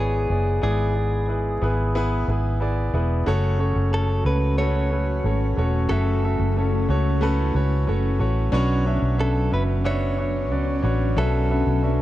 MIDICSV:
0, 0, Header, 1, 5, 480
1, 0, Start_track
1, 0, Key_signature, 3, "minor"
1, 0, Tempo, 658834
1, 458, Time_signature, 4, 2, 24, 8
1, 8757, End_track
2, 0, Start_track
2, 0, Title_t, "Clean electric guitar"
2, 0, Program_c, 0, 27
2, 0, Note_on_c, 0, 68, 98
2, 453, Note_off_c, 0, 68, 0
2, 462, Note_on_c, 0, 68, 88
2, 1871, Note_off_c, 0, 68, 0
2, 2870, Note_on_c, 0, 69, 90
2, 3088, Note_off_c, 0, 69, 0
2, 3105, Note_on_c, 0, 71, 87
2, 3336, Note_off_c, 0, 71, 0
2, 3339, Note_on_c, 0, 73, 105
2, 4290, Note_off_c, 0, 73, 0
2, 4293, Note_on_c, 0, 69, 89
2, 5946, Note_off_c, 0, 69, 0
2, 6707, Note_on_c, 0, 69, 93
2, 6945, Note_off_c, 0, 69, 0
2, 6948, Note_on_c, 0, 71, 89
2, 7011, Note_off_c, 0, 71, 0
2, 7186, Note_on_c, 0, 73, 102
2, 8112, Note_off_c, 0, 73, 0
2, 8145, Note_on_c, 0, 69, 88
2, 8757, Note_off_c, 0, 69, 0
2, 8757, End_track
3, 0, Start_track
3, 0, Title_t, "Grand piano"
3, 0, Program_c, 1, 0
3, 0, Control_c, 1, 64, 127
3, 0, Note_on_c, 1, 59, 72
3, 0, Note_on_c, 1, 64, 66
3, 0, Note_on_c, 1, 68, 66
3, 0, Note_on_c, 1, 71, 102
3, 0, Note_on_c, 1, 73, 78
3, 0, Note_on_c, 1, 74, 78
3, 154, Note_off_c, 1, 59, 0
3, 155, Note_off_c, 1, 64, 0
3, 158, Note_off_c, 1, 68, 0
3, 160, Note_off_c, 1, 73, 0
3, 211, Note_on_c, 1, 59, 70
3, 215, Note_on_c, 1, 64, 66
3, 220, Note_on_c, 1, 68, 65
3, 226, Note_off_c, 1, 74, 0
3, 226, Note_on_c, 1, 74, 75
3, 394, Note_off_c, 1, 59, 0
3, 395, Note_off_c, 1, 64, 0
3, 398, Note_off_c, 1, 68, 0
3, 401, Note_off_c, 1, 74, 0
3, 449, Note_on_c, 1, 59, 90
3, 456, Note_on_c, 1, 56, 65
3, 456, Note_on_c, 1, 64, 82
3, 457, Note_on_c, 1, 44, 64
3, 459, Note_on_c, 1, 68, 86
3, 460, Note_on_c, 1, 74, 100
3, 632, Note_off_c, 1, 59, 0
3, 636, Note_off_c, 1, 64, 0
3, 637, Note_off_c, 1, 68, 0
3, 638, Note_off_c, 1, 74, 0
3, 684, Note_on_c, 1, 59, 68
3, 686, Note_on_c, 1, 64, 60
3, 692, Note_on_c, 1, 68, 65
3, 696, Note_on_c, 1, 74, 77
3, 870, Note_off_c, 1, 59, 0
3, 871, Note_off_c, 1, 64, 0
3, 874, Note_off_c, 1, 68, 0
3, 876, Note_off_c, 1, 74, 0
3, 931, Note_on_c, 1, 59, 72
3, 936, Note_on_c, 1, 64, 66
3, 942, Note_on_c, 1, 68, 65
3, 946, Note_off_c, 1, 71, 0
3, 946, Note_on_c, 1, 71, 81
3, 1113, Note_off_c, 1, 59, 0
3, 1116, Note_off_c, 1, 64, 0
3, 1119, Note_off_c, 1, 68, 0
3, 1121, Note_off_c, 1, 71, 0
3, 1148, Note_off_c, 1, 44, 0
3, 1148, Note_off_c, 1, 56, 0
3, 1177, Note_on_c, 1, 59, 91
3, 1183, Note_on_c, 1, 64, 85
3, 1187, Note_on_c, 1, 68, 86
3, 1192, Note_on_c, 1, 71, 100
3, 1356, Note_off_c, 1, 59, 0
3, 1359, Note_off_c, 1, 64, 0
3, 1361, Note_off_c, 1, 68, 0
3, 1364, Note_off_c, 1, 71, 0
3, 1421, Note_on_c, 1, 59, 118
3, 1423, Note_on_c, 1, 64, 103
3, 1426, Note_on_c, 1, 68, 109
3, 1435, Note_on_c, 1, 71, 127
3, 1599, Note_off_c, 1, 59, 0
3, 1599, Note_off_c, 1, 64, 0
3, 1601, Note_off_c, 1, 68, 0
3, 1605, Note_off_c, 1, 71, 0
3, 1660, Note_on_c, 1, 59, 84
3, 1666, Note_on_c, 1, 64, 81
3, 1670, Note_on_c, 1, 80, 63
3, 1671, Note_on_c, 1, 68, 78
3, 1676, Note_on_c, 1, 71, 88
3, 1838, Note_off_c, 1, 59, 0
3, 1841, Note_off_c, 1, 64, 0
3, 1843, Note_off_c, 1, 68, 0
3, 1846, Note_off_c, 1, 71, 0
3, 1888, Note_off_c, 1, 80, 0
3, 1895, Note_on_c, 1, 59, 81
3, 1899, Note_on_c, 1, 64, 79
3, 1902, Note_on_c, 1, 76, 72
3, 1905, Note_on_c, 1, 68, 80
3, 1907, Note_on_c, 1, 74, 95
3, 2075, Note_off_c, 1, 59, 0
3, 2077, Note_off_c, 1, 64, 0
3, 2080, Note_off_c, 1, 68, 0
3, 2081, Note_off_c, 1, 74, 0
3, 2138, Note_on_c, 1, 59, 86
3, 2143, Note_on_c, 1, 68, 79
3, 2144, Note_on_c, 1, 64, 78
3, 2150, Note_on_c, 1, 71, 92
3, 2317, Note_off_c, 1, 59, 0
3, 2319, Note_off_c, 1, 68, 0
3, 2320, Note_off_c, 1, 64, 0
3, 2323, Note_off_c, 1, 71, 0
3, 2351, Note_off_c, 1, 76, 0
3, 2376, Note_on_c, 1, 61, 99
3, 2378, Note_on_c, 1, 57, 120
3, 2379, Note_on_c, 1, 66, 110
3, 2383, Note_on_c, 1, 49, 77
3, 2384, Note_on_c, 1, 69, 105
3, 2388, Control_c, 1, 64, 0
3, 2389, Note_on_c, 1, 73, 123
3, 2520, Control_c, 1, 64, 127
3, 2556, Note_off_c, 1, 57, 0
3, 2556, Note_off_c, 1, 61, 0
3, 2557, Note_off_c, 1, 66, 0
3, 2560, Note_off_c, 1, 69, 0
3, 2562, Note_off_c, 1, 73, 0
3, 2611, Note_on_c, 1, 57, 90
3, 2615, Note_on_c, 1, 61, 78
3, 2616, Note_on_c, 1, 66, 77
3, 2620, Note_on_c, 1, 69, 74
3, 2623, Note_on_c, 1, 73, 94
3, 2793, Note_off_c, 1, 57, 0
3, 2795, Note_off_c, 1, 61, 0
3, 2796, Note_off_c, 1, 66, 0
3, 2798, Note_off_c, 1, 69, 0
3, 2799, Note_off_c, 1, 73, 0
3, 2852, Note_on_c, 1, 57, 73
3, 2857, Note_on_c, 1, 61, 66
3, 2861, Note_on_c, 1, 66, 62
3, 2864, Note_on_c, 1, 69, 67
3, 2865, Note_on_c, 1, 73, 78
3, 3033, Note_off_c, 1, 57, 0
3, 3036, Note_off_c, 1, 61, 0
3, 3038, Note_off_c, 1, 66, 0
3, 3040, Note_off_c, 1, 69, 0
3, 3040, Note_off_c, 1, 73, 0
3, 3072, Note_off_c, 1, 49, 0
3, 3094, Note_on_c, 1, 57, 74
3, 3098, Note_on_c, 1, 61, 69
3, 3102, Note_on_c, 1, 66, 69
3, 3102, Note_on_c, 1, 69, 72
3, 3108, Note_on_c, 1, 73, 77
3, 3275, Note_off_c, 1, 57, 0
3, 3277, Note_off_c, 1, 61, 0
3, 3279, Note_off_c, 1, 66, 0
3, 3279, Note_off_c, 1, 69, 0
3, 3281, Note_off_c, 1, 73, 0
3, 3338, Note_on_c, 1, 57, 98
3, 3341, Note_on_c, 1, 61, 95
3, 3346, Note_on_c, 1, 66, 95
3, 3348, Note_on_c, 1, 69, 90
3, 3351, Note_on_c, 1, 71, 105
3, 3517, Note_off_c, 1, 57, 0
3, 3518, Note_off_c, 1, 61, 0
3, 3520, Note_off_c, 1, 66, 0
3, 3521, Note_off_c, 1, 69, 0
3, 3523, Note_off_c, 1, 71, 0
3, 3576, Note_on_c, 1, 57, 71
3, 3579, Note_on_c, 1, 61, 67
3, 3581, Note_on_c, 1, 66, 67
3, 3588, Note_on_c, 1, 69, 67
3, 3588, Note_on_c, 1, 71, 74
3, 3755, Note_off_c, 1, 57, 0
3, 3757, Note_off_c, 1, 61, 0
3, 3758, Note_off_c, 1, 66, 0
3, 3762, Note_off_c, 1, 69, 0
3, 3762, Note_off_c, 1, 71, 0
3, 3820, Note_on_c, 1, 57, 74
3, 3820, Note_on_c, 1, 61, 69
3, 3826, Note_on_c, 1, 66, 67
3, 3827, Note_on_c, 1, 69, 65
3, 3832, Note_on_c, 1, 73, 80
3, 3997, Note_off_c, 1, 57, 0
3, 3997, Note_off_c, 1, 61, 0
3, 4001, Note_off_c, 1, 66, 0
3, 4001, Note_off_c, 1, 69, 0
3, 4003, Note_off_c, 1, 73, 0
3, 4055, Note_on_c, 1, 57, 89
3, 4061, Note_on_c, 1, 61, 80
3, 4066, Note_on_c, 1, 66, 80
3, 4069, Note_on_c, 1, 73, 98
3, 4070, Note_on_c, 1, 69, 79
3, 4235, Note_off_c, 1, 57, 0
3, 4238, Note_off_c, 1, 61, 0
3, 4240, Note_off_c, 1, 66, 0
3, 4242, Note_off_c, 1, 73, 0
3, 4243, Note_off_c, 1, 69, 0
3, 4292, Note_on_c, 1, 57, 98
3, 4295, Note_on_c, 1, 61, 89
3, 4299, Note_on_c, 1, 49, 67
3, 4299, Note_on_c, 1, 66, 91
3, 4300, Note_on_c, 1, 69, 86
3, 4304, Note_on_c, 1, 76, 109
3, 4474, Note_off_c, 1, 57, 0
3, 4475, Note_off_c, 1, 61, 0
3, 4477, Note_off_c, 1, 66, 0
3, 4478, Note_off_c, 1, 69, 0
3, 4479, Note_off_c, 1, 76, 0
3, 4538, Note_on_c, 1, 57, 68
3, 4545, Note_on_c, 1, 61, 65
3, 4547, Note_on_c, 1, 66, 65
3, 4550, Note_on_c, 1, 69, 66
3, 4553, Note_on_c, 1, 76, 83
3, 4716, Note_off_c, 1, 57, 0
3, 4720, Note_off_c, 1, 61, 0
3, 4721, Note_off_c, 1, 66, 0
3, 4722, Note_off_c, 1, 69, 0
3, 4724, Note_off_c, 1, 76, 0
3, 4781, Note_on_c, 1, 57, 78
3, 4787, Note_on_c, 1, 61, 67
3, 4788, Note_on_c, 1, 66, 68
3, 4792, Note_on_c, 1, 69, 69
3, 4796, Note_on_c, 1, 73, 80
3, 4958, Note_off_c, 1, 57, 0
3, 4961, Note_off_c, 1, 61, 0
3, 4961, Note_off_c, 1, 66, 0
3, 4964, Note_off_c, 1, 69, 0
3, 4965, Note_off_c, 1, 73, 0
3, 4989, Note_off_c, 1, 49, 0
3, 5017, Note_on_c, 1, 57, 96
3, 5020, Note_on_c, 1, 61, 81
3, 5024, Note_on_c, 1, 66, 80
3, 5025, Note_on_c, 1, 69, 81
3, 5030, Note_on_c, 1, 73, 98
3, 5196, Note_off_c, 1, 57, 0
3, 5197, Note_off_c, 1, 61, 0
3, 5200, Note_off_c, 1, 66, 0
3, 5200, Note_off_c, 1, 69, 0
3, 5202, Note_off_c, 1, 73, 0
3, 5252, Note_on_c, 1, 57, 121
3, 5259, Note_on_c, 1, 61, 113
3, 5261, Note_on_c, 1, 66, 107
3, 5261, Note_on_c, 1, 69, 104
3, 5267, Note_on_c, 1, 71, 126
3, 5433, Note_off_c, 1, 57, 0
3, 5437, Note_off_c, 1, 61, 0
3, 5438, Note_off_c, 1, 66, 0
3, 5438, Note_off_c, 1, 69, 0
3, 5441, Note_off_c, 1, 71, 0
3, 5492, Note_on_c, 1, 57, 84
3, 5497, Note_on_c, 1, 61, 74
3, 5502, Note_on_c, 1, 66, 76
3, 5504, Note_on_c, 1, 69, 83
3, 5507, Note_on_c, 1, 73, 98
3, 5673, Note_off_c, 1, 57, 0
3, 5676, Note_off_c, 1, 61, 0
3, 5678, Note_off_c, 1, 66, 0
3, 5679, Note_off_c, 1, 69, 0
3, 5681, Note_off_c, 1, 73, 0
3, 5736, Note_on_c, 1, 57, 94
3, 5739, Note_on_c, 1, 61, 79
3, 5742, Note_on_c, 1, 66, 83
3, 5744, Note_on_c, 1, 69, 83
3, 5748, Note_on_c, 1, 73, 98
3, 5915, Note_off_c, 1, 57, 0
3, 5916, Note_off_c, 1, 61, 0
3, 5918, Note_off_c, 1, 66, 0
3, 5919, Note_off_c, 1, 69, 0
3, 5921, Note_off_c, 1, 73, 0
3, 5968, Note_on_c, 1, 57, 88
3, 5968, Note_on_c, 1, 61, 79
3, 5973, Note_on_c, 1, 66, 87
3, 5974, Note_on_c, 1, 69, 77
3, 5980, Note_on_c, 1, 73, 95
3, 6151, Note_off_c, 1, 57, 0
3, 6151, Note_off_c, 1, 61, 0
3, 6154, Note_off_c, 1, 66, 0
3, 6154, Note_off_c, 1, 69, 0
3, 6157, Note_off_c, 1, 73, 0
3, 6207, Note_on_c, 1, 61, 124
3, 6210, Note_on_c, 1, 62, 114
3, 6215, Note_on_c, 1, 66, 106
3, 6216, Note_on_c, 1, 47, 76
3, 6217, Note_on_c, 1, 54, 83
3, 6219, Note_on_c, 1, 71, 108
3, 6223, Note_on_c, 1, 73, 127
3, 6227, Control_c, 1, 64, 0
3, 6358, Control_c, 1, 64, 127
3, 6391, Note_off_c, 1, 61, 0
3, 6392, Note_off_c, 1, 62, 0
3, 6394, Note_off_c, 1, 66, 0
3, 6396, Note_off_c, 1, 71, 0
3, 6399, Note_off_c, 1, 73, 0
3, 6448, Note_on_c, 1, 61, 87
3, 6454, Note_on_c, 1, 62, 84
3, 6458, Note_on_c, 1, 66, 79
3, 6458, Note_on_c, 1, 71, 82
3, 6462, Note_on_c, 1, 76, 97
3, 6631, Note_off_c, 1, 61, 0
3, 6634, Note_off_c, 1, 62, 0
3, 6636, Note_off_c, 1, 66, 0
3, 6636, Note_off_c, 1, 71, 0
3, 6638, Note_off_c, 1, 76, 0
3, 6683, Note_on_c, 1, 61, 73
3, 6685, Note_on_c, 1, 62, 73
3, 6688, Note_on_c, 1, 66, 72
3, 6690, Note_on_c, 1, 71, 75
3, 6691, Note_on_c, 1, 76, 83
3, 6868, Note_off_c, 1, 61, 0
3, 6869, Note_off_c, 1, 62, 0
3, 6871, Note_off_c, 1, 66, 0
3, 6872, Note_off_c, 1, 71, 0
3, 6873, Note_off_c, 1, 76, 0
3, 6907, Note_off_c, 1, 47, 0
3, 6908, Note_off_c, 1, 54, 0
3, 6925, Note_on_c, 1, 61, 82
3, 6928, Note_on_c, 1, 62, 67
3, 6934, Note_on_c, 1, 66, 73
3, 6934, Note_on_c, 1, 71, 70
3, 6940, Note_on_c, 1, 76, 83
3, 7110, Note_off_c, 1, 61, 0
3, 7111, Note_off_c, 1, 62, 0
3, 7114, Note_off_c, 1, 66, 0
3, 7114, Note_off_c, 1, 71, 0
3, 7117, Note_off_c, 1, 76, 0
3, 7171, Note_on_c, 1, 61, 100
3, 7173, Note_on_c, 1, 62, 97
3, 7176, Note_on_c, 1, 66, 97
3, 7179, Note_on_c, 1, 71, 89
3, 7180, Note_on_c, 1, 76, 114
3, 7352, Note_off_c, 1, 61, 0
3, 7354, Note_off_c, 1, 62, 0
3, 7355, Note_off_c, 1, 66, 0
3, 7356, Note_off_c, 1, 71, 0
3, 7357, Note_off_c, 1, 76, 0
3, 7411, Note_on_c, 1, 61, 75
3, 7416, Note_on_c, 1, 62, 65
3, 7420, Note_on_c, 1, 66, 66
3, 7424, Note_on_c, 1, 71, 67
3, 7427, Note_on_c, 1, 76, 77
3, 7593, Note_off_c, 1, 61, 0
3, 7595, Note_off_c, 1, 62, 0
3, 7597, Note_off_c, 1, 66, 0
3, 7599, Note_off_c, 1, 71, 0
3, 7601, Note_off_c, 1, 76, 0
3, 7648, Note_on_c, 1, 61, 75
3, 7657, Note_on_c, 1, 62, 68
3, 7659, Note_on_c, 1, 66, 72
3, 7661, Note_on_c, 1, 71, 66
3, 7662, Note_on_c, 1, 74, 87
3, 7831, Note_off_c, 1, 61, 0
3, 7836, Note_off_c, 1, 62, 0
3, 7837, Note_off_c, 1, 66, 0
3, 7838, Note_off_c, 1, 71, 0
3, 7838, Note_off_c, 1, 74, 0
3, 7886, Note_on_c, 1, 61, 86
3, 7890, Note_on_c, 1, 62, 83
3, 7895, Note_on_c, 1, 66, 77
3, 7898, Note_on_c, 1, 71, 77
3, 7902, Note_on_c, 1, 73, 90
3, 8070, Note_off_c, 1, 61, 0
3, 8072, Note_off_c, 1, 62, 0
3, 8075, Note_off_c, 1, 66, 0
3, 8076, Note_off_c, 1, 71, 0
3, 8078, Note_off_c, 1, 73, 0
3, 8135, Note_on_c, 1, 61, 95
3, 8135, Note_on_c, 1, 62, 95
3, 8136, Note_on_c, 1, 66, 90
3, 8138, Note_on_c, 1, 54, 67
3, 8139, Note_on_c, 1, 47, 64
3, 8139, Note_on_c, 1, 71, 87
3, 8147, Note_on_c, 1, 76, 108
3, 8314, Note_off_c, 1, 61, 0
3, 8314, Note_off_c, 1, 62, 0
3, 8315, Note_off_c, 1, 66, 0
3, 8317, Note_off_c, 1, 71, 0
3, 8321, Note_off_c, 1, 76, 0
3, 8376, Note_on_c, 1, 61, 74
3, 8378, Note_on_c, 1, 62, 65
3, 8380, Note_on_c, 1, 66, 65
3, 8384, Note_on_c, 1, 71, 70
3, 8388, Note_on_c, 1, 76, 83
3, 8555, Note_off_c, 1, 61, 0
3, 8556, Note_off_c, 1, 62, 0
3, 8557, Note_off_c, 1, 66, 0
3, 8559, Note_off_c, 1, 71, 0
3, 8561, Note_off_c, 1, 76, 0
3, 8616, Note_on_c, 1, 61, 73
3, 8618, Note_on_c, 1, 62, 63
3, 8623, Note_on_c, 1, 66, 67
3, 8626, Note_on_c, 1, 71, 63
3, 8627, Note_on_c, 1, 76, 81
3, 8757, Note_off_c, 1, 47, 0
3, 8757, Note_off_c, 1, 54, 0
3, 8757, Note_off_c, 1, 61, 0
3, 8757, Note_off_c, 1, 62, 0
3, 8757, Note_off_c, 1, 66, 0
3, 8757, Note_off_c, 1, 71, 0
3, 8757, Note_off_c, 1, 76, 0
3, 8757, End_track
4, 0, Start_track
4, 0, Title_t, "Ambient pad"
4, 0, Program_c, 2, 92
4, 2375, Note_on_c, 2, 57, 74
4, 2377, Note_on_c, 2, 66, 87
4, 2378, Note_on_c, 2, 54, 71
4, 2379, Note_on_c, 2, 61, 82
4, 4278, Note_off_c, 2, 66, 0
4, 4295, Note_on_c, 2, 64, 86
4, 6186, Note_off_c, 2, 57, 0
4, 6197, Note_off_c, 2, 64, 0
4, 6216, Note_on_c, 2, 59, 73
4, 6218, Note_on_c, 2, 62, 87
4, 8757, Note_off_c, 2, 54, 0
4, 8757, Note_off_c, 2, 59, 0
4, 8757, Note_off_c, 2, 61, 0
4, 8757, Note_off_c, 2, 62, 0
4, 8757, End_track
5, 0, Start_track
5, 0, Title_t, "Fingered electric bass"
5, 0, Program_c, 3, 33
5, 0, Note_on_c, 3, 32, 99
5, 191, Note_off_c, 3, 32, 0
5, 217, Note_on_c, 3, 30, 90
5, 441, Note_off_c, 3, 30, 0
5, 460, Note_on_c, 3, 32, 97
5, 1150, Note_off_c, 3, 32, 0
5, 1181, Note_on_c, 3, 32, 109
5, 1631, Note_off_c, 3, 32, 0
5, 1661, Note_on_c, 3, 32, 96
5, 2110, Note_off_c, 3, 32, 0
5, 2139, Note_on_c, 3, 28, 95
5, 2362, Note_off_c, 3, 28, 0
5, 2384, Note_on_c, 3, 30, 99
5, 2716, Note_off_c, 3, 30, 0
5, 2739, Note_on_c, 3, 30, 97
5, 3073, Note_off_c, 3, 30, 0
5, 3094, Note_on_c, 3, 37, 90
5, 3787, Note_off_c, 3, 37, 0
5, 3818, Note_on_c, 3, 32, 84
5, 4041, Note_off_c, 3, 32, 0
5, 4061, Note_on_c, 3, 28, 92
5, 4283, Note_off_c, 3, 28, 0
5, 4301, Note_on_c, 3, 30, 108
5, 4634, Note_off_c, 3, 30, 0
5, 4659, Note_on_c, 3, 30, 94
5, 4993, Note_off_c, 3, 30, 0
5, 5019, Note_on_c, 3, 37, 99
5, 5469, Note_off_c, 3, 37, 0
5, 5499, Note_on_c, 3, 37, 96
5, 5721, Note_off_c, 3, 37, 0
5, 5744, Note_on_c, 3, 30, 95
5, 5964, Note_off_c, 3, 30, 0
5, 5973, Note_on_c, 3, 33, 86
5, 6198, Note_off_c, 3, 33, 0
5, 6213, Note_on_c, 3, 35, 113
5, 6549, Note_off_c, 3, 35, 0
5, 6573, Note_on_c, 3, 35, 102
5, 6909, Note_off_c, 3, 35, 0
5, 6936, Note_on_c, 3, 30, 91
5, 7660, Note_off_c, 3, 30, 0
5, 7660, Note_on_c, 3, 37, 101
5, 7882, Note_off_c, 3, 37, 0
5, 7894, Note_on_c, 3, 33, 89
5, 8118, Note_off_c, 3, 33, 0
5, 8135, Note_on_c, 3, 35, 104
5, 8470, Note_off_c, 3, 35, 0
5, 8499, Note_on_c, 3, 35, 109
5, 8757, Note_off_c, 3, 35, 0
5, 8757, End_track
0, 0, End_of_file